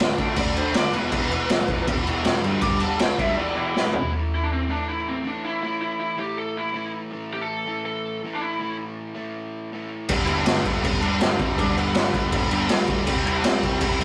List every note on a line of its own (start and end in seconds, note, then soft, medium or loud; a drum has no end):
0.00 0.11 A1 medium
0.00 0.16 D3 medium
0.00 0.16 A3 medium
0.00 0.16 D4 medium
0.00 0.35 G5 loud
0.00 snare loud
0.17 0.30 D2 medium
0.17 0.33 D3 medium
0.17 0.34 A3 medium
0.17 0.35 D4 loud
0.17 kick medium
0.17 crash medium
0.34 0.48 D2 medium
0.34 0.71 D3 loud
0.34 0.72 A3 medium
0.34 0.72 D4 loud
0.34 0.56 D5 loud
0.34 kick loud
0.34 crash medium
0.53 0.67 D2 medium
0.53 0.72 D3 medium
0.53 0.73 A3 loud
0.53 0.73 D4 loud
0.53 crash medium
0.58 0.76 C5 medium
0.72 0.86 D2 medium
0.72 0.91 D3 medium
0.72 0.92 A3 medium
0.72 0.92 D4 loud
0.72 0.94 D5 loud
0.72 snare loud
0.72 crash medium
0.92 1.04 E1 medium
0.92 1.09 E2 loud
0.92 1.10 B2 loud
0.92 1.10 E3 loud
0.92 2.03 B4 loud
0.92 crash medium
1.10 1.35 E1 loud
1.10 1.48 E2 medium
1.10 1.48 B2 loud
1.10 1.49 E3 loud
1.10 kick loud
1.10 crash medium
1.31 1.48 E2 medium
1.31 1.48 B2 medium
1.31 crash medium
1.49 1.61 B1 medium
1.49 1.66 E2 medium
1.49 1.67 B2 medium
1.49 1.67 E3 loud
1.49 snare loud
1.49 crash medium
1.67 1.80 E1 medium
1.67 1.85 E2 medium
1.67 1.86 B2 medium
1.67 1.87 E3 loud
1.67 kick medium
1.67 crash medium
1.86 1.99 E1 medium
1.86 2.23 E2 medium
1.86 2.24 B2 loud
1.86 2.25 E3 loud
1.86 kick loud
1.86 crash medium
2.07 2.18 E1 medium
2.07 2.24 E2 medium
2.07 2.24 B2 loud
2.07 2.25 E3 loud
2.07 crash medium
2.24 2.36 E1 medium
2.24 2.42 E2 medium
2.24 2.43 B2 loud
2.24 2.43 E3 medium
2.24 snare loud
2.24 crash medium
2.42 2.54 G1 medium
2.42 2.62 G2 loud
2.42 2.62 D3 loud
2.42 2.63 G3 loud
2.42 crash medium
2.61 2.85 G1 medium
2.61 2.98 G2 loud
2.61 2.99 D3 loud
2.61 3.00 G3 loud
2.61 2.81 D6 loud
2.61 kick loud
2.61 crash medium
2.80 2.99 G2 medium
2.80 2.99 D3 medium
2.80 2.99 A5 loud
2.80 crash medium
2.99 3.11 D2 medium
2.99 3.18 G2 medium
2.99 3.19 D3 medium
2.99 3.19 G3 loud
2.99 3.19 G5 loud
2.99 snare loud
2.99 crash medium
3.19 3.30 D2 medium
3.19 3.37 G2 medium
3.19 3.37 D3 medium
3.19 3.37 G3 loud
3.19 3.36 E5 loud
3.19 kick medium
3.19 crash medium
3.36 3.73 E2 loud
3.36 3.73 B2 loud
3.36 3.74 E3 loud
3.36 3.55 D5 loud
3.55 3.73 E2 medium
3.55 3.74 B2 loud
3.55 3.74 E3 loud
3.55 3.73 E4 loud
3.74 3.92 E2 medium
3.74 3.92 B2 loud
3.74 3.93 E3 loud
3.74 4.11 E4 loud
3.74 snare medium
3.92 4.11 E2 medium
3.92 4.11 B2 loud
3.92 4.11 E3 loud
3.92 floor tom medium
4.12 4.71 A2 loud
4.12 4.69 E3 loud
4.12 4.68 A3 loud
4.35 4.42 E4 medium
4.43 4.51 D4 medium
4.53 4.70 C4 medium
4.68 5.22 A2 medium
4.68 5.24 E3 medium
4.68 5.26 A3 loud
4.68 4.89 D4 medium
4.88 5.07 E4 loud
5.08 5.26 C4 medium
5.23 5.61 A2 medium
5.23 5.62 E3 medium
5.23 5.64 A3 medium
5.27 5.44 D4 loud
5.44 5.62 E4 loud
5.62 6.20 A2 loud
5.62 6.18 E3 medium
5.62 6.17 A3 medium
5.62 5.80 E4 loud
5.82 5.99 E4 medium
6.00 6.19 E4 loud
6.17 6.72 A2 medium
6.17 6.74 E3 medium
6.17 6.75 A3 medium
6.17 6.38 G4 loud
6.39 6.57 A4 loud
6.57 6.91 E4 loud
6.73 7.10 A2 medium
6.73 7.12 E3 medium
6.73 7.13 A3 loud
7.11 7.68 A2 medium
7.11 7.67 E3 medium
7.11 7.65 A3 loud
7.34 7.41 G4 loud
7.41 7.84 A4 loud
7.66 8.22 A2 medium
7.66 8.22 E3 medium
7.66 8.21 A3 medium
7.86 8.20 A4 loud
8.23 8.57 A2 medium
8.23 8.60 E3 medium
8.23 8.61 A3 loud
8.35 8.42 D4 medium
8.41 8.76 E4 medium
8.59 9.14 A2 medium
8.59 9.15 E3 loud
8.59 9.13 A3 loud
9.15 9.71 A2 medium
9.15 9.71 E3 medium
9.15 9.70 A3 medium
9.72 10.08 A2 medium
9.72 10.09 E3 medium
9.72 10.09 A3 medium
10.09 10.26 G1 loud
10.09 10.26 G2 loud
10.09 10.27 D3 loud
10.09 10.27 G3 loud
10.09 kick loud
10.09 crash medium
10.26 10.44 G1 medium
10.26 10.47 G2 medium
10.26 10.46 D3 medium
10.26 10.48 G3 loud
10.26 10.36 E4 loud
10.26 crash medium
10.35 10.63 D4 loud
10.46 10.79 G1 medium
10.46 10.65 G2 medium
10.46 10.66 D3 medium
10.46 10.67 G3 medium
10.46 snare loud
10.46 crash loud
10.64 10.82 G2 medium
10.64 10.83 D3 loud
10.64 10.85 G3 loud
10.64 11.00 B3 loud
10.64 kick medium
10.64 crash medium
10.83 11.00 G1 medium
10.83 11.01 G2 loud
10.83 11.02 D3 loud
10.83 11.03 G3 loud
10.83 kick loud
10.83 crash loud
11.01 11.18 G1 medium
11.01 11.19 G2 medium
11.01 11.20 D3 medium
11.01 11.22 G3 medium
11.01 11.37 D4 loud
11.01 crash medium
11.20 11.37 G1 medium
11.20 11.39 G2 loud
11.20 11.40 D3 loud
11.20 11.42 G3 loud
11.20 snare loud
11.20 crash medium
11.38 11.56 G1 medium
11.38 11.58 G2 medium
11.38 11.58 D3 medium
11.38 11.43 C4 medium
11.38 kick medium
11.38 crash medium
11.42 11.59 G3 loud
11.58 11.74 G1 loud
11.58 11.76 G2 medium
11.58 11.76 D3 loud
11.58 11.78 G3 loud
11.58 11.77 D4 loud
11.58 kick loud
11.58 crash medium
11.76 11.93 G1 medium
11.76 11.94 G2 medium
11.76 11.94 D3 medium
11.76 11.95 G3 loud
11.76 12.88 B3 medium
11.76 crash medium
11.94 12.11 G1 loud
11.94 12.13 G2 medium
11.94 12.14 D3 medium
11.94 12.15 G3 medium
11.94 snare loud
11.94 crash medium
12.14 12.30 G1 medium
12.14 12.30 G2 medium
12.14 12.31 D3 medium
12.14 12.32 G3 loud
12.14 kick medium
12.14 crash medium
12.32 12.49 G1 medium
12.32 12.49 G2 loud
12.32 12.50 D3 loud
12.32 12.50 G3 loud
12.32 kick loud
12.32 crash loud
12.50 12.67 G1 loud
12.50 12.69 G2 medium
12.50 12.70 D3 medium
12.50 12.70 G3 medium
12.50 crash medium
12.69 13.02 D2 medium
12.69 12.87 G2 medium
12.69 12.87 D3 loud
12.69 12.88 G3 loud
12.69 snare loud
12.69 crash loud
12.88 13.06 G2 medium
12.88 13.05 D3 loud
12.88 13.06 G3 loud
12.88 kick medium
12.88 crash medium
13.06 13.23 C2 medium
13.06 13.24 C3 loud
13.06 13.25 G3 loud
13.06 13.26 C4 loud
13.06 kick loud
13.06 crash medium
13.24 13.41 C2 medium
13.24 13.43 C3 medium
13.24 13.43 G3 medium
13.24 13.45 C4 loud
13.24 13.35 E4 loud
13.24 crash medium
13.36 13.45 D4 loud
13.43 13.76 C2 medium
13.43 13.61 C3 medium
13.43 13.62 G3 medium
13.43 13.83 C4 loud
13.43 13.63 C4 loud
13.43 snare loud
13.43 crash medium
13.62 13.80 C3 medium
13.62 13.80 G3 medium
13.62 13.81 C4 loud
13.62 kick medium
13.62 crash medium
13.81 13.98 C2 medium
13.81 13.99 C3 loud
13.81 13.99 G3 loud
13.81 14.01 C4 loud
13.81 14.01 E4 loud
13.81 kick loud
13.81 crash loud
13.99 14.04 C2 loud
13.99 14.04 C3 medium
13.99 14.04 G3 medium
13.99 14.04 C4 medium
13.99 crash medium